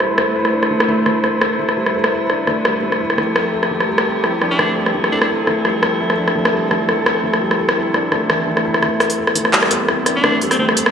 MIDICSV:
0, 0, Header, 1, 9, 480
1, 0, Start_track
1, 0, Key_signature, 0, "minor"
1, 0, Tempo, 352941
1, 486, Time_signature, 4, 2, 24, 8
1, 14839, End_track
2, 0, Start_track
2, 0, Title_t, "Synth drone"
2, 0, Program_c, 0, 95
2, 0, Note_on_c, 0, 64, 81
2, 12005, Note_on_c, 0, 69, 84
2, 12011, Note_off_c, 0, 64, 0
2, 14839, Note_off_c, 0, 69, 0
2, 14839, End_track
3, 0, Start_track
3, 0, Title_t, "Alto saxophone"
3, 0, Program_c, 1, 65
3, 6132, Note_on_c, 1, 62, 81
3, 6418, Note_off_c, 1, 62, 0
3, 6961, Note_on_c, 1, 62, 84
3, 7046, Note_off_c, 1, 62, 0
3, 7093, Note_on_c, 1, 62, 69
3, 7164, Note_off_c, 1, 62, 0
3, 13812, Note_on_c, 1, 62, 85
3, 14098, Note_off_c, 1, 62, 0
3, 14291, Note_on_c, 1, 60, 82
3, 14363, Note_off_c, 1, 60, 0
3, 14401, Note_on_c, 1, 60, 75
3, 14486, Note_off_c, 1, 60, 0
3, 14839, End_track
4, 0, Start_track
4, 0, Title_t, "String section"
4, 0, Program_c, 2, 48
4, 0, Note_on_c, 2, 57, 73
4, 0, Note_on_c, 2, 64, 68
4, 0, Note_on_c, 2, 71, 66
4, 0, Note_on_c, 2, 72, 79
4, 4270, Note_off_c, 2, 57, 0
4, 4271, Note_off_c, 2, 64, 0
4, 4271, Note_off_c, 2, 71, 0
4, 4272, Note_off_c, 2, 72, 0
4, 4331, Note_on_c, 2, 60, 69
4, 4331, Note_on_c, 2, 67, 68
4, 4331, Note_on_c, 2, 69, 81
4, 4333, Note_on_c, 2, 53, 75
4, 8130, Note_off_c, 2, 67, 0
4, 11954, Note_off_c, 2, 60, 0
4, 11954, Note_off_c, 2, 69, 0
4, 11955, Note_off_c, 2, 53, 0
4, 12003, Note_on_c, 2, 57, 79
4, 12004, Note_on_c, 2, 59, 69
4, 12005, Note_on_c, 2, 60, 83
4, 14839, Note_off_c, 2, 57, 0
4, 14839, Note_off_c, 2, 59, 0
4, 14839, Note_off_c, 2, 60, 0
4, 14839, End_track
5, 0, Start_track
5, 0, Title_t, "Felt piano"
5, 0, Program_c, 3, 0
5, 0, Control_c, 3, 64, 127
5, 0, Note_on_c, 3, 55, 77
5, 0, Note_on_c, 3, 57, 72
5, 0, Note_on_c, 3, 62, 67
5, 0, Note_on_c, 3, 64, 70
5, 0, Note_on_c, 3, 69, 78
5, 2, Note_off_c, 3, 55, 0
5, 2, Note_on_c, 3, 55, 70
5, 222, Note_off_c, 3, 55, 0
5, 243, Note_off_c, 3, 69, 0
5, 243, Note_on_c, 3, 69, 69
5, 473, Note_off_c, 3, 69, 0
5, 483, Note_off_c, 3, 64, 0
5, 483, Note_on_c, 3, 64, 74
5, 629, Note_off_c, 3, 64, 0
5, 723, Note_off_c, 3, 62, 0
5, 723, Note_on_c, 3, 62, 68
5, 942, Note_off_c, 3, 62, 0
5, 964, Note_off_c, 3, 57, 0
5, 964, Note_on_c, 3, 57, 73
5, 1182, Note_off_c, 3, 57, 0
5, 1205, Note_on_c, 3, 57, 95
5, 1424, Note_off_c, 3, 57, 0
5, 1445, Note_on_c, 3, 57, 74
5, 1663, Note_off_c, 3, 57, 0
5, 1683, Note_on_c, 3, 69, 73
5, 1902, Note_off_c, 3, 69, 0
5, 1925, Note_on_c, 3, 69, 70
5, 2143, Note_off_c, 3, 69, 0
5, 2165, Note_on_c, 3, 57, 67
5, 2383, Note_off_c, 3, 57, 0
5, 2405, Note_on_c, 3, 55, 75
5, 2623, Note_off_c, 3, 55, 0
5, 2645, Note_on_c, 3, 69, 68
5, 2874, Note_off_c, 3, 69, 0
5, 2884, Note_on_c, 3, 64, 70
5, 3030, Note_off_c, 3, 64, 0
5, 3125, Note_on_c, 3, 62, 69
5, 3343, Note_off_c, 3, 62, 0
5, 3366, Note_on_c, 3, 57, 76
5, 3583, Note_off_c, 3, 57, 0
5, 3604, Note_on_c, 3, 55, 70
5, 3750, Note_off_c, 3, 55, 0
5, 3845, Note_on_c, 3, 57, 68
5, 4063, Note_off_c, 3, 57, 0
5, 4086, Note_on_c, 3, 64, 68
5, 4230, Note_off_c, 3, 64, 0
5, 4325, Note_on_c, 3, 57, 75
5, 4341, Control_c, 3, 64, 0
5, 4543, Note_off_c, 3, 57, 0
5, 4565, Note_on_c, 3, 69, 67
5, 4570, Control_c, 3, 64, 127
5, 4783, Note_off_c, 3, 69, 0
5, 4806, Note_on_c, 3, 69, 68
5, 5024, Note_off_c, 3, 69, 0
5, 5045, Note_on_c, 3, 57, 70
5, 5263, Note_off_c, 3, 57, 0
5, 5285, Note_on_c, 3, 55, 75
5, 5503, Note_off_c, 3, 55, 0
5, 5527, Note_on_c, 3, 69, 71
5, 5755, Note_off_c, 3, 69, 0
5, 5768, Note_on_c, 3, 64, 71
5, 5912, Note_off_c, 3, 64, 0
5, 6009, Note_on_c, 3, 62, 67
5, 6225, Note_off_c, 3, 62, 0
5, 6248, Note_on_c, 3, 57, 76
5, 6465, Note_off_c, 3, 57, 0
5, 6489, Note_on_c, 3, 55, 69
5, 6632, Note_off_c, 3, 55, 0
5, 6726, Note_on_c, 3, 57, 69
5, 6944, Note_off_c, 3, 57, 0
5, 6966, Note_on_c, 3, 69, 72
5, 7184, Note_off_c, 3, 69, 0
5, 7206, Note_on_c, 3, 69, 77
5, 7424, Note_off_c, 3, 69, 0
5, 7445, Note_on_c, 3, 57, 73
5, 7663, Note_off_c, 3, 57, 0
5, 7684, Note_on_c, 3, 55, 71
5, 7903, Note_off_c, 3, 55, 0
5, 7925, Note_on_c, 3, 69, 70
5, 8154, Note_off_c, 3, 69, 0
5, 8163, Note_on_c, 3, 64, 78
5, 8309, Note_off_c, 3, 64, 0
5, 8402, Note_on_c, 3, 62, 70
5, 8621, Note_off_c, 3, 62, 0
5, 8643, Note_on_c, 3, 57, 72
5, 8862, Note_off_c, 3, 57, 0
5, 8884, Note_on_c, 3, 55, 69
5, 9030, Note_off_c, 3, 55, 0
5, 9125, Note_on_c, 3, 57, 81
5, 9343, Note_off_c, 3, 57, 0
5, 9364, Note_on_c, 3, 69, 74
5, 9581, Note_off_c, 3, 69, 0
5, 9602, Note_on_c, 3, 69, 70
5, 9821, Note_off_c, 3, 69, 0
5, 9842, Note_on_c, 3, 57, 70
5, 10062, Note_off_c, 3, 57, 0
5, 10083, Note_on_c, 3, 55, 80
5, 10302, Note_off_c, 3, 55, 0
5, 10324, Note_on_c, 3, 69, 68
5, 10553, Note_off_c, 3, 69, 0
5, 10565, Note_on_c, 3, 64, 72
5, 10710, Note_off_c, 3, 64, 0
5, 10803, Note_on_c, 3, 62, 72
5, 11022, Note_off_c, 3, 62, 0
5, 11042, Note_on_c, 3, 57, 80
5, 11261, Note_off_c, 3, 57, 0
5, 11282, Note_on_c, 3, 52, 73
5, 11512, Note_off_c, 3, 52, 0
5, 11521, Note_on_c, 3, 57, 72
5, 11741, Note_off_c, 3, 57, 0
5, 11761, Note_on_c, 3, 64, 70
5, 11981, Note_off_c, 3, 64, 0
5, 12000, Note_on_c, 3, 57, 77
5, 12025, Control_c, 3, 64, 0
5, 12221, Note_off_c, 3, 57, 0
5, 12243, Note_on_c, 3, 69, 68
5, 12246, Control_c, 3, 64, 127
5, 12462, Note_off_c, 3, 69, 0
5, 12486, Note_on_c, 3, 69, 75
5, 12703, Note_off_c, 3, 69, 0
5, 12724, Note_on_c, 3, 57, 74
5, 12943, Note_off_c, 3, 57, 0
5, 12964, Note_on_c, 3, 55, 77
5, 13182, Note_off_c, 3, 55, 0
5, 13204, Note_on_c, 3, 69, 75
5, 13434, Note_off_c, 3, 69, 0
5, 13444, Note_on_c, 3, 64, 70
5, 13590, Note_off_c, 3, 64, 0
5, 13683, Note_on_c, 3, 62, 68
5, 13902, Note_off_c, 3, 62, 0
5, 13922, Note_on_c, 3, 57, 79
5, 14142, Note_off_c, 3, 57, 0
5, 14163, Note_on_c, 3, 55, 69
5, 14309, Note_off_c, 3, 55, 0
5, 14402, Note_on_c, 3, 57, 75
5, 14622, Note_off_c, 3, 57, 0
5, 14643, Note_on_c, 3, 69, 71
5, 14839, Note_off_c, 3, 69, 0
5, 14839, End_track
6, 0, Start_track
6, 0, Title_t, "Sub bass"
6, 0, Program_c, 4, 38
6, 12002, Note_on_c, 4, 33, 96
6, 13909, Note_off_c, 4, 33, 0
6, 13923, Note_on_c, 4, 33, 98
6, 14146, Note_off_c, 4, 33, 0
6, 14161, Note_on_c, 4, 33, 95
6, 14385, Note_off_c, 4, 33, 0
6, 14839, End_track
7, 0, Start_track
7, 0, Title_t, "Downlifter"
7, 0, Program_c, 5, 103
7, 0, Note_on_c, 5, 60, 66
7, 485, Note_off_c, 5, 60, 0
7, 14839, End_track
8, 0, Start_track
8, 0, Title_t, "Riser"
8, 0, Program_c, 6, 103
8, 12004, Note_on_c, 6, 60, 74
8, 14839, Note_off_c, 6, 60, 0
8, 14839, End_track
9, 0, Start_track
9, 0, Title_t, "Drums"
9, 4, Note_on_c, 9, 37, 50
9, 140, Note_off_c, 9, 37, 0
9, 243, Note_on_c, 9, 37, 70
9, 379, Note_off_c, 9, 37, 0
9, 611, Note_on_c, 9, 37, 47
9, 747, Note_off_c, 9, 37, 0
9, 853, Note_on_c, 9, 37, 47
9, 989, Note_off_c, 9, 37, 0
9, 1092, Note_on_c, 9, 37, 71
9, 1228, Note_off_c, 9, 37, 0
9, 1443, Note_on_c, 9, 37, 48
9, 1579, Note_off_c, 9, 37, 0
9, 1684, Note_on_c, 9, 37, 45
9, 1820, Note_off_c, 9, 37, 0
9, 1924, Note_on_c, 9, 37, 70
9, 2060, Note_off_c, 9, 37, 0
9, 2294, Note_on_c, 9, 37, 46
9, 2430, Note_off_c, 9, 37, 0
9, 2535, Note_on_c, 9, 37, 46
9, 2671, Note_off_c, 9, 37, 0
9, 2774, Note_on_c, 9, 37, 67
9, 2910, Note_off_c, 9, 37, 0
9, 3124, Note_on_c, 9, 37, 43
9, 3260, Note_off_c, 9, 37, 0
9, 3364, Note_on_c, 9, 37, 47
9, 3500, Note_off_c, 9, 37, 0
9, 3605, Note_on_c, 9, 37, 70
9, 3741, Note_off_c, 9, 37, 0
9, 3975, Note_on_c, 9, 37, 43
9, 4111, Note_off_c, 9, 37, 0
9, 4216, Note_on_c, 9, 37, 45
9, 4328, Note_off_c, 9, 37, 0
9, 4328, Note_on_c, 9, 37, 46
9, 4464, Note_off_c, 9, 37, 0
9, 4566, Note_on_c, 9, 37, 71
9, 4702, Note_off_c, 9, 37, 0
9, 4935, Note_on_c, 9, 37, 48
9, 5071, Note_off_c, 9, 37, 0
9, 5175, Note_on_c, 9, 37, 48
9, 5311, Note_off_c, 9, 37, 0
9, 5414, Note_on_c, 9, 37, 72
9, 5550, Note_off_c, 9, 37, 0
9, 5764, Note_on_c, 9, 37, 47
9, 5900, Note_off_c, 9, 37, 0
9, 6005, Note_on_c, 9, 37, 46
9, 6141, Note_off_c, 9, 37, 0
9, 6243, Note_on_c, 9, 37, 72
9, 6379, Note_off_c, 9, 37, 0
9, 6615, Note_on_c, 9, 37, 47
9, 6751, Note_off_c, 9, 37, 0
9, 6855, Note_on_c, 9, 37, 49
9, 6991, Note_off_c, 9, 37, 0
9, 7093, Note_on_c, 9, 37, 72
9, 7229, Note_off_c, 9, 37, 0
9, 7443, Note_on_c, 9, 37, 47
9, 7579, Note_off_c, 9, 37, 0
9, 7683, Note_on_c, 9, 37, 48
9, 7819, Note_off_c, 9, 37, 0
9, 7925, Note_on_c, 9, 37, 72
9, 8061, Note_off_c, 9, 37, 0
9, 8295, Note_on_c, 9, 37, 50
9, 8431, Note_off_c, 9, 37, 0
9, 8536, Note_on_c, 9, 37, 49
9, 8672, Note_off_c, 9, 37, 0
9, 8776, Note_on_c, 9, 37, 77
9, 8912, Note_off_c, 9, 37, 0
9, 9126, Note_on_c, 9, 37, 52
9, 9262, Note_off_c, 9, 37, 0
9, 9367, Note_on_c, 9, 37, 52
9, 9503, Note_off_c, 9, 37, 0
9, 9606, Note_on_c, 9, 37, 78
9, 9742, Note_off_c, 9, 37, 0
9, 9976, Note_on_c, 9, 37, 50
9, 10112, Note_off_c, 9, 37, 0
9, 10215, Note_on_c, 9, 37, 51
9, 10351, Note_off_c, 9, 37, 0
9, 10454, Note_on_c, 9, 37, 78
9, 10590, Note_off_c, 9, 37, 0
9, 10804, Note_on_c, 9, 37, 51
9, 10940, Note_off_c, 9, 37, 0
9, 11042, Note_on_c, 9, 37, 51
9, 11178, Note_off_c, 9, 37, 0
9, 11284, Note_on_c, 9, 37, 75
9, 11420, Note_off_c, 9, 37, 0
9, 11654, Note_on_c, 9, 37, 50
9, 11790, Note_off_c, 9, 37, 0
9, 11892, Note_on_c, 9, 37, 53
9, 12003, Note_off_c, 9, 37, 0
9, 12003, Note_on_c, 9, 37, 51
9, 12139, Note_off_c, 9, 37, 0
9, 12244, Note_on_c, 9, 37, 75
9, 12244, Note_on_c, 9, 46, 35
9, 12373, Note_off_c, 9, 46, 0
9, 12373, Note_on_c, 9, 46, 59
9, 12380, Note_off_c, 9, 37, 0
9, 12509, Note_off_c, 9, 46, 0
9, 12613, Note_on_c, 9, 37, 52
9, 12723, Note_on_c, 9, 42, 64
9, 12749, Note_off_c, 9, 37, 0
9, 12852, Note_on_c, 9, 37, 52
9, 12859, Note_off_c, 9, 42, 0
9, 12962, Note_on_c, 9, 39, 116
9, 12988, Note_off_c, 9, 37, 0
9, 13092, Note_on_c, 9, 37, 78
9, 13098, Note_off_c, 9, 39, 0
9, 13203, Note_on_c, 9, 42, 79
9, 13228, Note_off_c, 9, 37, 0
9, 13339, Note_off_c, 9, 42, 0
9, 13444, Note_on_c, 9, 37, 53
9, 13580, Note_off_c, 9, 37, 0
9, 13684, Note_on_c, 9, 37, 52
9, 13684, Note_on_c, 9, 42, 66
9, 13820, Note_off_c, 9, 37, 0
9, 13820, Note_off_c, 9, 42, 0
9, 13923, Note_on_c, 9, 37, 74
9, 14059, Note_off_c, 9, 37, 0
9, 14163, Note_on_c, 9, 46, 35
9, 14293, Note_off_c, 9, 46, 0
9, 14293, Note_on_c, 9, 37, 49
9, 14293, Note_on_c, 9, 46, 60
9, 14429, Note_off_c, 9, 37, 0
9, 14429, Note_off_c, 9, 46, 0
9, 14535, Note_on_c, 9, 37, 52
9, 14645, Note_on_c, 9, 42, 63
9, 14671, Note_off_c, 9, 37, 0
9, 14773, Note_on_c, 9, 37, 78
9, 14781, Note_off_c, 9, 42, 0
9, 14839, Note_off_c, 9, 37, 0
9, 14839, End_track
0, 0, End_of_file